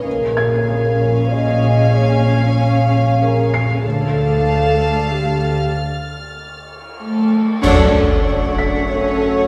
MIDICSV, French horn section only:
0, 0, Header, 1, 2, 480
1, 0, Start_track
1, 0, Tempo, 631579
1, 43, Time_signature, 3, 2, 24, 8
1, 7200, End_track
2, 0, Start_track
2, 0, Title_t, "French horn section"
2, 0, Program_c, 0, 60
2, 34, Note_on_c, 0, 70, 84
2, 999, Note_off_c, 0, 70, 0
2, 999, Note_on_c, 0, 75, 110
2, 1481, Note_off_c, 0, 75, 0
2, 1488, Note_on_c, 0, 73, 96
2, 2445, Note_off_c, 0, 73, 0
2, 2451, Note_on_c, 0, 70, 85
2, 2682, Note_off_c, 0, 70, 0
2, 2917, Note_on_c, 0, 69, 106
2, 3850, Note_off_c, 0, 69, 0
2, 3889, Note_on_c, 0, 67, 81
2, 4366, Note_off_c, 0, 67, 0
2, 5800, Note_on_c, 0, 66, 80
2, 5804, Note_on_c, 0, 69, 79
2, 7200, Note_off_c, 0, 66, 0
2, 7200, Note_off_c, 0, 69, 0
2, 7200, End_track
0, 0, End_of_file